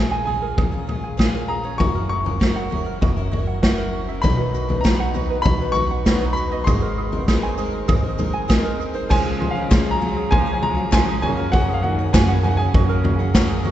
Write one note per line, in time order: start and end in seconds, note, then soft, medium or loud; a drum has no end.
0.00 0.54 A#1 loud
0.00 0.26 A#2 medium
0.00 0.25 G#3 medium
0.00 0.26 C#4 medium
0.00 0.26 F4 medium
0.00 0.25 G#4 medium
0.00 0.26 G#4 medium
0.00 0.12 A#4 medium
0.00 0.24 G#5 medium
0.11 0.73 G#5 medium
0.25 0.72 G#3 medium
0.25 0.72 C#4 medium
0.25 0.72 F4 medium
0.25 0.56 G#4 medium
0.25 0.70 G#4 medium
0.25 1.52 G#5 medium
0.25 floor tom medium
0.42 1.03 A#4 medium
0.58 1.76 A#1 medium
0.58 0.87 G#4 medium
0.58 kick loud
0.58 floor tom loud
0.71 0.86 C#4 soft
0.71 0.87 F4 soft
0.71 0.87 G#4 soft
0.87 1.16 G#3 medium
0.87 1.17 C#4 medium
0.87 1.18 F4 medium
0.87 1.18 G#4 medium
0.87 floor tom medium
1.04 1.65 G#5 medium
1.17 1.64 A#2 medium
1.17 1.64 G#3 medium
1.17 1.64 C#4 medium
1.17 1.63 F4 loud
1.17 1.48 G#4 medium
1.17 1.62 G#4 medium
1.17 kick loud
1.17 snare loud
1.35 1.80 A#4 medium
1.48 1.80 G#4 medium
1.48 1.80 A#5 medium
1.63 1.77 C#4 soft
1.63 1.79 F4 soft
1.63 1.79 G#4 medium
1.63 1.80 C#5 medium
1.78 2.98 F#1 loud
1.78 2.25 F#3 medium
1.78 2.25 C#4 medium
1.78 2.25 E4 medium
1.78 2.08 F#4 medium
1.78 2.23 A#4 medium
1.78 2.08 C#6 loud
1.78 kick loud
1.78 floor tom loud
1.95 2.56 A#4 medium
2.09 2.39 F#4 medium
2.09 2.67 C#6 loud
2.25 2.39 C#4 soft
2.25 2.39 E4 soft
2.25 2.40 A#4 medium
2.25 floor tom medium
2.39 2.68 F#3 medium
2.39 2.69 C#4 medium
2.39 2.70 E4 medium
2.39 2.70 F#4 medium
2.39 2.71 A#4 medium
2.39 kick medium
2.39 snare loud
2.56 3.17 F#5 medium
2.70 3.16 F#3 medium
2.70 3.17 C#4 medium
2.70 3.16 E4 medium
2.70 3.00 F#4 medium
2.70 3.15 A#4 medium
2.70 floor tom medium
2.86 3.47 A#4 medium
3.01 4.20 F#1 medium
3.01 3.31 F#4 medium
3.01 kick loud
3.01 floor tom loud
3.16 3.30 C#4 medium
3.16 3.32 E4 medium
3.16 3.32 A#4 medium
3.31 3.62 F#3 medium
3.31 3.63 C#4 medium
3.31 3.62 E4 medium
3.31 3.61 F#4 medium
3.31 3.63 A#4 medium
3.31 floor tom medium
3.47 4.08 F#5 medium
3.62 4.09 F#3 medium
3.62 4.08 C#4 loud
3.62 4.08 E4 medium
3.62 3.92 F#4 medium
3.62 4.06 A#4 loud
3.62 kick loud
3.62 snare loud
3.78 4.24 A#4 medium
3.93 4.22 F#4 medium
4.08 4.23 C#4 soft
4.08 4.24 E4 soft
4.08 4.23 A#4 soft
4.08 4.24 E5 medium
4.22 5.42 B1 loud
4.22 6.64 B1 medium
4.22 4.39 B2 medium
4.22 6.64 B2 medium
4.22 4.39 D#3 medium
4.22 4.39 F#3 medium
4.22 4.81 F#3 medium
4.22 4.39 B3 medium
4.22 4.38 D#4 medium
4.22 4.81 D#4 medium
4.22 4.53 F#4 medium
4.22 4.37 B4 medium
4.22 4.82 B4 medium
4.22 4.82 D#5 medium
4.22 4.80 B5 loud
4.22 kick loud
4.22 floor tom loud
4.22 shaker medium
4.38 4.70 F#3 soft
4.38 4.69 B3 soft
4.38 4.68 D#4 soft
4.38 4.67 B4 soft
4.38 5.00 B4 medium
4.54 4.83 F#4 medium
4.54 shaker medium
4.69 4.83 F#3 soft
4.69 4.84 B3 soft
4.69 4.84 D#4 medium
4.69 4.84 B4 medium
4.69 floor tom medium
4.81 5.15 B2 medium
4.81 5.15 D#3 medium
4.81 5.13 F#3 medium
4.81 5.14 F#3 medium
4.81 5.13 D#4 medium
4.81 5.13 F#4 medium
4.81 5.46 A#5 medium
4.81 shaker medium
4.85 5.14 B3 medium
4.85 5.15 D#4 medium
4.85 5.14 B4 medium
4.85 5.15 B4 medium
4.85 5.14 D#5 medium
4.85 kick loud
4.85 snare loud
5.00 5.61 F#5 medium
5.14 5.61 F#3 medium
5.14 5.43 F#3 medium
5.14 5.61 B3 medium
5.14 5.43 D#4 medium
5.14 5.61 D#4 medium
5.14 5.44 F#4 medium
5.14 5.43 B4 medium
5.14 5.60 B4 medium
5.14 5.43 D#5 medium
5.14 floor tom medium
5.14 shaker medium
5.30 5.91 B4 medium
5.42 6.63 B1 medium
5.42 6.02 F#3 medium
5.42 6.02 D#4 medium
5.42 5.74 F#4 medium
5.42 6.03 B4 medium
5.42 6.03 D#5 medium
5.42 5.72 B5 loud
5.42 kick loud
5.42 floor tom loud
5.42 shaker medium
5.61 5.75 F#3 medium
5.61 5.76 B3 medium
5.61 5.77 D#4 medium
5.61 5.76 B4 medium
5.72 6.05 F#4 medium
5.72 6.37 C#6 loud
5.72 floor tom medium
5.72 shaker medium
5.77 6.07 F#3 medium
5.77 6.07 B3 medium
5.77 6.07 D#4 medium
5.77 6.08 B4 medium
5.91 6.52 F#5 medium
6.06 6.22 B2 medium
6.06 6.22 D#3 medium
6.06 6.63 F#3 medium
6.06 6.23 F#3 medium
6.06 6.22 B3 medium
6.06 6.63 D#4 medium
6.06 6.22 D#4 medium
6.06 6.35 F#4 medium
6.06 6.63 B4 medium
6.06 6.21 B4 medium
6.06 6.64 D#5 medium
6.06 kick loud
6.06 snare loud
6.06 shaker medium
6.21 6.52 F#3 soft
6.21 6.51 B3 soft
6.21 6.50 D#4 soft
6.21 6.67 B4 medium
6.21 6.50 B4 soft
6.33 6.66 F#4 medium
6.33 6.63 B5 medium
6.33 shaker medium
6.51 6.65 F#3 soft
6.51 6.66 B3 soft
6.51 6.66 D#4 medium
6.51 6.66 B4 soft
6.51 6.67 D#5 medium
6.64 9.06 G#1 medium
6.64 7.85 G#1 loud
6.64 9.06 G#2 medium
6.64 7.12 G#3 medium
6.64 7.24 G#3 medium
6.64 7.13 C4 medium
6.64 7.25 C4 medium
6.64 7.11 D#4 medium
6.64 6.96 G#4 medium
6.64 7.11 A#4 medium
6.64 7.24 A#4 medium
6.64 7.25 D#5 loud
6.64 8.44 C6 medium
6.64 kick loud
6.64 floor tom loud
6.64 shaker medium
6.82 7.43 A#4 medium
6.98 7.26 G#4 medium
7.12 7.27 C4 soft
7.12 7.28 D#4 medium
7.12 7.28 A#4 medium
7.12 floor tom medium
7.28 7.56 G#3 medium
7.28 7.57 C4 medium
7.28 7.58 D#4 medium
7.28 7.57 G#4 medium
7.28 7.57 A#4 medium
7.28 7.58 A#4 medium
7.28 7.57 D#5 medium
7.28 kick loud
7.28 snare loud
7.28 shaker medium
7.43 8.04 G#5 medium
7.58 8.04 G#3 medium
7.58 7.86 G#3 medium
7.58 8.04 C4 medium
7.58 7.86 C4 medium
7.58 8.03 D#4 medium
7.58 7.87 G#4 medium
7.58 7.86 A#4 medium
7.58 8.02 A#4 medium
7.58 7.87 D#5 medium
7.58 shaker medium
7.73 8.34 A#4 medium
7.87 9.07 G#1 medium
7.87 8.45 G#3 medium
7.87 8.45 C4 medium
7.87 8.18 G#4 loud
7.87 8.46 A#4 medium
7.87 8.46 D#5 loud
7.87 kick loud
7.87 floor tom loud
7.87 shaker medium
8.04 8.18 C4 medium
8.04 8.18 D#4 medium
8.04 8.19 A#4 medium
8.18 8.47 G#3 medium
8.18 8.47 C4 medium
8.18 8.48 D#4 medium
8.18 8.48 G#4 medium
8.18 8.48 A#4 medium
8.18 floor tom medium
8.18 shaker medium
8.33 8.95 G#5 medium
8.48 8.64 G#3 medium
8.48 9.07 G#3 loud
8.48 8.64 C4 loud
8.48 9.07 C4 medium
8.48 8.65 D#4 loud
8.48 8.78 G#4 medium
8.48 8.64 A#4 medium
8.48 9.07 A#4 medium
8.48 9.07 D#5 loud
8.48 kick loud
8.48 snare loud
8.48 shaker loud
8.65 8.95 C4 soft
8.65 8.93 D#4 medium
8.65 9.10 A#4 medium
8.65 8.92 A#4 medium
8.79 9.09 G#4 medium
8.79 shaker medium
8.93 9.10 C4 soft
8.93 9.10 D#4 soft
8.93 9.10 A#4 medium
8.93 9.10 C5 medium
9.09 11.19 C#2 medium
9.09 9.67 C#2 loud
9.09 9.55 C#3 medium
9.09 11.19 C#3 medium
9.09 9.47 F3 medium
9.09 9.67 F3 medium
9.09 9.56 F3 medium
9.09 9.67 G#3 medium
9.09 9.56 G#3 medium
9.09 9.67 C#4 medium
9.09 9.55 C#4 medium
9.09 9.39 F4 medium
9.09 9.67 G#4 medium
9.09 9.54 G#4 medium
9.09 9.68 C#5 medium
9.09 9.48 G#5 loud
9.09 kick loud
9.09 floor tom medium
9.09 crash loud
9.25 9.86 G#4 medium
9.40 9.69 F4 medium
9.40 floor tom medium
9.51 9.89 C#3 medium
9.51 9.89 F5 medium
9.55 9.70 G#3 soft
9.55 9.70 C#4 medium
9.55 9.70 G#4 medium
9.69 10.28 C#2 medium
9.69 10.01 C#3 medium
9.69 10.01 F3 medium
9.69 10.27 G#3 medium
9.69 10.00 G#3 medium
9.69 10.27 C#4 medium
9.69 10.01 C#4 medium
9.69 10.27 F4 medium
9.69 10.31 F4 medium
9.69 10.27 G#4 medium
9.69 10.02 G#4 medium
9.69 10.28 C#5 medium
9.69 kick loud
9.69 snare loud
9.69 clap medium
9.69 floor tom medium
9.86 10.47 F5 medium
9.91 10.29 F#3 medium
9.91 10.33 A#5 medium
10.01 10.47 G#3 medium
10.01 10.46 C#4 medium
10.01 10.45 G#4 medium
10.01 floor tom medium
10.17 10.77 G#4 medium
10.31 11.19 C#2 loud
10.31 10.88 F3 medium
10.31 10.53 F3 medium
10.31 10.88 G#3 medium
10.31 10.89 C#4 medium
10.31 10.60 F4 medium
10.31 10.89 G#4 medium
10.31 10.89 C#5 medium
10.31 10.52 G#5 loud
10.31 kick loud
10.31 floor tom medium
10.46 10.76 G#3 soft
10.46 10.75 C#4 medium
10.46 10.74 G#4 medium
10.46 11.08 C#5 medium
10.53 10.62 F3 medium
10.53 10.61 G#5 medium
10.62 10.91 F#3 medium
10.62 10.91 F4 medium
10.62 10.94 A#5 loud
10.62 floor tom medium
10.75 10.91 G#3 soft
10.75 10.91 C#4 medium
10.75 10.91 G#4 medium
10.75 11.22 F5 medium
10.91 11.22 C#3 medium
10.91 11.22 F3 medium
10.91 11.21 F3 medium
10.91 11.23 G#3 medium
10.91 11.22 G#3 medium
10.91 11.22 C#4 medium
10.91 11.22 F4 medium
10.91 11.22 G#4 medium
10.91 11.23 C#5 medium
10.91 11.21 G#5 loud
10.91 kick loud
10.91 snare loud
10.91 clap medium
10.91 floor tom medium
11.08 11.23 G#4 medium
11.21 13.62 F#1 medium
11.21 12.10 F#2 medium
11.21 13.62 F#2 medium
11.21 11.51 C#3 medium
11.21 11.37 F#3 medium
11.21 12.08 F#3 medium
11.21 11.38 A#3 medium
11.21 12.08 A#3 medium
11.21 11.37 C#4 medium
11.21 12.09 C#4 medium
11.21 11.52 F#4 medium
11.21 11.36 G#4 medium
11.21 12.09 G#4 medium
11.21 12.09 C#5 medium
11.21 11.51 G#5 loud
11.21 floor tom medium
11.37 11.52 A#3 soft
11.37 11.52 C#4 soft
11.37 11.53 G#4 soft
11.37 11.99 A#4 medium
11.52 11.75 C#3 medium
11.52 11.98 F#3 medium
11.52 11.98 A#3 medium
11.52 11.99 C#4 medium
11.52 11.82 F#4 medium
11.52 11.97 G#4 medium
11.52 11.77 F#5 loud
11.52 kick loud
11.52 floor tom medium
11.69 12.29 G#4 medium
11.74 11.83 C#3 medium
11.74 11.82 F5 medium
11.83 12.12 D#3 medium
11.83 12.13 F#4 medium
11.83 12.14 F#5 medium
11.83 floor tom medium
11.99 12.13 A#3 medium
11.99 12.13 C#4 medium
11.99 12.14 G#4 medium
12.13 12.71 F#2 loud
12.13 12.42 C#3 medium
12.13 12.70 F#3 medium
12.13 12.43 F#3 medium
12.13 12.70 A#3 medium
12.13 12.44 A#3 medium
12.13 12.71 C#4 medium
12.13 12.45 C#4 medium
12.13 12.73 F#4 medium
12.13 12.71 G#4 medium
12.13 12.45 G#4 medium
12.13 12.71 C#5 medium
12.13 12.42 G#5 medium
12.13 kick loud
12.13 snare loud
12.13 clap loud
12.13 floor tom medium
12.29 12.89 F#5 medium
12.43 12.50 F3 medium
12.43 12.59 F#3 medium
12.43 12.60 A#3 medium
12.43 12.59 C#4 medium
12.43 12.58 G#4 medium
12.43 12.50 G#5 medium
12.43 floor tom medium
12.49 12.57 D#3 medium
12.49 12.57 F#5 medium
12.57 13.62 C#3 medium
12.57 12.90 A#3 soft
12.57 12.89 C#4 medium
12.57 13.20 G#4 medium
12.57 12.88 G#4 medium
12.57 13.61 G#5 medium
12.74 13.71 F#2 loud
12.74 13.31 F#3 medium
12.74 13.32 A#3 medium
12.74 13.32 C#4 medium
12.74 13.03 F#4 medium
12.74 13.32 G#4 medium
12.74 13.32 C#5 medium
12.74 kick loud
12.74 floor tom medium
12.89 13.20 A#3 medium
12.89 13.19 C#4 medium
12.89 13.18 G#4 medium
12.89 13.50 A#4 medium
13.04 13.33 F#4 medium
13.04 floor tom loud
13.19 13.33 A#3 medium
13.19 13.34 C#4 medium
13.19 13.34 G#4 medium
13.19 13.71 F#5 medium
13.34 13.63 F#3 loud
13.34 13.71 F#3 loud
13.34 13.65 A#3 loud
13.34 13.71 A#3 medium
13.34 13.65 C#4 loud
13.34 13.71 C#4 medium
13.34 13.64 F#4 medium
13.34 13.66 G#4 loud
13.34 13.71 G#4 medium
13.34 13.71 C#5 loud
13.34 kick loud
13.34 snare loud
13.34 clap loud
13.34 floor tom medium
13.49 13.71 G#4 medium
13.64 13.71 F#3 medium
13.64 13.71 A#3 medium
13.64 13.71 C#4 medium
13.64 13.71 F#4 medium
13.64 13.71 G#4 medium
13.64 floor tom medium